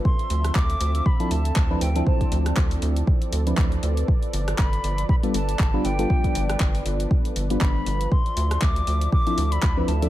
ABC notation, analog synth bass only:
X:1
M:4/4
L:1/8
Q:"Swing 16ths" 1/4=119
K:Ddor
V:1 name="Analog synth bass" clef=bass
z D,, D,, D,, z D,, D,, D,, | z D,, D,, D,, z D,, D,, D,, | z G,,, G,,, G,,, z G,,, G,,, G,,, | z G,,, G,,, G,,, z G,,, G,,, G,,, |
z D,, D,, D,, z D,, D,, D,, |]